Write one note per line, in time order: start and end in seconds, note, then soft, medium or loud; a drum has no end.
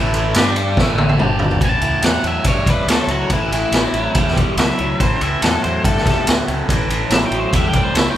0.00 0.33 A1 medium
0.00 0.36 A2 medium
0.00 0.36 E3 loud
0.00 0.37 A3 loud
0.00 0.35 E4 medium
0.00 0.35 A4 medium
0.00 0.35 C#5 medium
0.00 0.35 E5 medium
0.14 ride medium
0.34 0.75 G2 medium
0.34 0.78 G3 medium
0.34 0.78 D4 medium
0.34 0.79 D4 medium
0.34 0.79 G4 medium
0.34 0.79 G4 loud
0.34 0.78 D5 medium
0.34 0.78 G5 medium
0.34 snare loud
0.34 ride loud
0.56 ride medium
0.77 1.17 A1 loud
0.77 1.20 A2 medium
0.77 1.20 E3 medium
0.77 1.21 A3 loud
0.77 1.20 E4 medium
0.77 1.20 A4 medium
0.77 1.20 C#5 medium
0.77 1.20 E5 medium
0.77 kick loud
0.77 snare medium
0.98 high tom medium
1.09 high tom medium
1.19 1.60 G1 medium
1.19 1.62 G2 medium
1.19 1.61 D3 medium
1.19 1.62 G3 medium
1.19 1.62 D4 medium
1.19 1.63 G4 medium
1.19 1.63 D5 medium
1.19 1.63 G5 medium
1.19 mid tom medium
1.39 floor tom medium
1.51 floor tom medium
1.60 1.74 A1 medium
1.60 1.81 A2 medium
1.60 1.82 E3 medium
1.60 kick loud
1.60 ride medium
1.65 2.05 A5 medium
1.81 1.95 C#2 medium
1.81 2.01 A2 medium
1.81 2.02 E3 medium
1.81 ride medium
2.02 2.17 E2 medium
2.02 2.23 A2 medium
2.02 2.23 F#3 medium
2.02 2.26 F#5 medium
2.02 snare loud
2.02 ride medium
2.24 2.38 E2 medium
2.24 2.45 A2 medium
2.24 2.46 F#3 medium
2.24 2.47 E5 medium
2.24 ride medium
2.44 2.58 G2 medium
2.44 2.66 A2 medium
2.44 2.66 G3 medium
2.44 2.68 C#5 medium
2.44 kick loud
2.44 ride medium
2.66 2.80 E2 medium
2.66 2.87 A2 medium
2.66 2.87 G3 medium
2.66 2.90 B4 medium
2.66 kick medium
2.66 ride medium
2.86 3.00 D2 medium
2.86 3.08 A2 medium
2.86 3.08 F#3 medium
2.86 3.10 A4 medium
2.86 snare loud
2.86 ride loud
3.07 3.21 C#2 medium
3.07 3.29 A2 medium
3.07 3.30 F#3 medium
3.07 3.31 F#4 medium
3.07 ride medium
3.30 3.43 A1 medium
3.30 3.50 A2 medium
3.30 3.51 E3 medium
3.30 3.52 E4 medium
3.30 kick loud
3.30 ride medium
3.51 3.64 A1 medium
3.51 3.72 A2 medium
3.51 3.72 E3 medium
3.51 4.35 E4 medium
3.51 ride medium
3.72 3.85 A1 medium
3.72 3.93 A2 medium
3.72 3.93 F#3 medium
3.72 snare loud
3.72 ride medium
3.93 4.07 A1 medium
3.93 4.14 A2 medium
3.93 4.15 F#3 medium
3.93 ride medium
4.15 4.41 E2 loud
4.15 4.34 A2 medium
4.15 4.35 G3 medium
4.15 kick loud
4.15 ride medium
4.28 snare soft
4.36 4.56 A2 medium
4.36 4.56 G3 medium
4.36 kick medium
4.36 ride medium
4.57 4.70 C#2 medium
4.57 4.77 A2 medium
4.57 4.77 F#3 medium
4.57 4.99 E5 loud
4.57 snare loud
4.57 ride medium
4.78 4.93 C#2 medium
4.78 4.99 A2 medium
4.78 4.99 F#3 medium
4.78 ride medium
5.00 5.14 A1 medium
5.00 5.20 A2 medium
5.00 5.20 E3 medium
5.00 5.21 C5 medium
5.00 kick loud
5.00 ride medium
5.21 5.35 C#2 medium
5.21 5.41 A2 medium
5.21 5.41 E3 medium
5.21 5.42 E5 medium
5.21 ride medium
5.42 5.56 E2 medium
5.42 5.62 A2 medium
5.42 5.62 F#3 medium
5.42 5.63 A4 medium
5.42 snare loud
5.42 ride medium
5.63 5.78 E2 medium
5.63 5.83 A2 medium
5.63 5.83 F#3 medium
5.63 5.84 C5 medium
5.63 ride medium
5.84 5.98 G2 loud
5.84 6.04 A2 medium
5.84 6.04 G3 medium
5.84 6.26 A4 loud
5.84 kick loud
5.84 ride medium
5.97 snare soft
6.05 6.19 E2 medium
6.05 6.25 A2 medium
6.05 6.25 G3 medium
6.05 kick medium
6.05 snare soft
6.05 ride medium
6.26 6.41 D2 medium
6.26 6.46 A2 medium
6.26 6.46 F#3 medium
6.26 snare loud
6.26 ride loud
6.47 6.61 C#2 medium
6.47 6.67 A2 medium
6.47 6.67 F#3 medium
6.47 ride medium
6.68 6.82 A1 medium
6.68 6.88 A2 medium
6.68 6.88 E3 medium
6.68 kick loud
6.68 ride medium
6.88 7.02 A1 medium
6.88 7.08 A2 medium
6.88 7.09 E3 medium
6.88 ride medium
7.10 7.23 A1 medium
7.10 7.29 A2 medium
7.10 7.29 F#3 medium
7.10 7.25 E5 loud
7.10 snare loud
7.10 ride medium
7.25 7.39 G5 medium
7.30 7.45 A1 medium
7.30 7.50 A2 medium
7.30 7.51 F#3 medium
7.30 ride medium
7.39 7.53 C5 medium
7.53 7.79 E2 medium
7.53 7.72 A2 medium
7.53 7.73 G3 medium
7.53 7.69 E5 medium
7.53 kick loud
7.53 ride medium
7.69 7.82 G5 medium
7.73 7.93 A2 medium
7.73 7.93 G3 medium
7.73 kick medium
7.73 ride medium
7.84 7.97 C5 medium
7.94 8.08 C#2 medium
7.94 8.14 A2 medium
7.94 8.14 F#3 medium
7.94 8.10 E5 medium
7.94 snare loud
7.94 ride medium
8.10 8.17 G5 medium